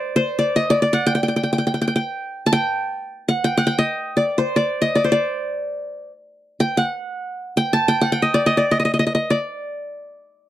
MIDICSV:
0, 0, Header, 1, 2, 480
1, 0, Start_track
1, 0, Tempo, 500000
1, 10071, End_track
2, 0, Start_track
2, 0, Title_t, "Qanun"
2, 0, Program_c, 0, 107
2, 0, Note_on_c, 0, 72, 58
2, 0, Note_on_c, 0, 74, 74
2, 149, Note_off_c, 0, 72, 0
2, 153, Note_on_c, 0, 72, 72
2, 367, Note_off_c, 0, 74, 0
2, 371, Note_on_c, 0, 74, 65
2, 537, Note_on_c, 0, 75, 67
2, 594, Note_off_c, 0, 74, 0
2, 673, Note_on_c, 0, 74, 78
2, 731, Note_off_c, 0, 75, 0
2, 783, Note_off_c, 0, 74, 0
2, 787, Note_on_c, 0, 74, 65
2, 892, Note_on_c, 0, 78, 82
2, 1022, Note_on_c, 0, 79, 80
2, 1080, Note_off_c, 0, 78, 0
2, 1099, Note_off_c, 0, 79, 0
2, 1103, Note_on_c, 0, 79, 56
2, 1168, Note_off_c, 0, 72, 0
2, 1177, Note_off_c, 0, 79, 0
2, 1181, Note_on_c, 0, 79, 54
2, 1228, Note_off_c, 0, 79, 0
2, 1231, Note_on_c, 0, 79, 51
2, 1304, Note_off_c, 0, 79, 0
2, 1308, Note_on_c, 0, 79, 51
2, 1373, Note_off_c, 0, 79, 0
2, 1377, Note_on_c, 0, 79, 48
2, 1461, Note_off_c, 0, 79, 0
2, 1465, Note_on_c, 0, 79, 56
2, 1516, Note_off_c, 0, 79, 0
2, 1519, Note_on_c, 0, 79, 49
2, 1597, Note_off_c, 0, 79, 0
2, 1601, Note_on_c, 0, 79, 50
2, 1666, Note_off_c, 0, 79, 0
2, 1670, Note_on_c, 0, 79, 47
2, 1733, Note_off_c, 0, 74, 0
2, 1739, Note_off_c, 0, 79, 0
2, 1742, Note_on_c, 0, 79, 52
2, 1797, Note_off_c, 0, 79, 0
2, 1801, Note_on_c, 0, 79, 48
2, 1874, Note_off_c, 0, 79, 0
2, 1878, Note_on_c, 0, 79, 59
2, 2365, Note_on_c, 0, 81, 68
2, 2421, Note_off_c, 0, 79, 0
2, 2425, Note_on_c, 0, 79, 97
2, 3106, Note_off_c, 0, 81, 0
2, 3153, Note_on_c, 0, 78, 67
2, 3211, Note_off_c, 0, 79, 0
2, 3305, Note_on_c, 0, 79, 75
2, 3362, Note_off_c, 0, 78, 0
2, 3431, Note_on_c, 0, 78, 78
2, 3489, Note_off_c, 0, 79, 0
2, 3520, Note_on_c, 0, 79, 74
2, 3577, Note_off_c, 0, 78, 0
2, 3634, Note_on_c, 0, 75, 75
2, 4000, Note_on_c, 0, 74, 59
2, 4058, Note_off_c, 0, 75, 0
2, 4204, Note_on_c, 0, 72, 63
2, 4315, Note_off_c, 0, 79, 0
2, 4375, Note_off_c, 0, 74, 0
2, 4379, Note_on_c, 0, 74, 61
2, 4623, Note_on_c, 0, 75, 70
2, 4681, Note_off_c, 0, 74, 0
2, 4756, Note_on_c, 0, 74, 61
2, 4813, Note_off_c, 0, 75, 0
2, 4838, Note_off_c, 0, 72, 0
2, 4842, Note_on_c, 0, 72, 57
2, 4909, Note_off_c, 0, 74, 0
2, 4913, Note_on_c, 0, 74, 72
2, 5857, Note_off_c, 0, 72, 0
2, 5859, Note_off_c, 0, 74, 0
2, 6337, Note_on_c, 0, 79, 76
2, 6502, Note_on_c, 0, 78, 69
2, 6560, Note_off_c, 0, 79, 0
2, 7268, Note_on_c, 0, 79, 80
2, 7325, Note_off_c, 0, 78, 0
2, 7422, Note_on_c, 0, 81, 83
2, 7563, Note_off_c, 0, 79, 0
2, 7567, Note_on_c, 0, 79, 83
2, 7693, Note_on_c, 0, 78, 75
2, 7751, Note_off_c, 0, 79, 0
2, 7796, Note_on_c, 0, 79, 73
2, 7854, Note_off_c, 0, 78, 0
2, 7894, Note_on_c, 0, 75, 65
2, 8008, Note_on_c, 0, 74, 73
2, 8065, Note_off_c, 0, 75, 0
2, 8124, Note_on_c, 0, 75, 73
2, 8163, Note_off_c, 0, 81, 0
2, 8182, Note_off_c, 0, 74, 0
2, 8229, Note_on_c, 0, 74, 67
2, 8286, Note_off_c, 0, 75, 0
2, 8365, Note_on_c, 0, 75, 66
2, 8423, Note_off_c, 0, 74, 0
2, 8440, Note_off_c, 0, 75, 0
2, 8443, Note_on_c, 0, 75, 51
2, 8492, Note_off_c, 0, 75, 0
2, 8496, Note_on_c, 0, 75, 56
2, 8575, Note_off_c, 0, 75, 0
2, 8579, Note_on_c, 0, 75, 52
2, 8592, Note_off_c, 0, 79, 0
2, 8629, Note_off_c, 0, 75, 0
2, 8633, Note_on_c, 0, 75, 58
2, 8699, Note_off_c, 0, 75, 0
2, 8703, Note_on_c, 0, 75, 49
2, 8777, Note_off_c, 0, 75, 0
2, 8781, Note_on_c, 0, 75, 59
2, 8932, Note_on_c, 0, 74, 58
2, 8989, Note_off_c, 0, 75, 0
2, 10071, Note_off_c, 0, 74, 0
2, 10071, End_track
0, 0, End_of_file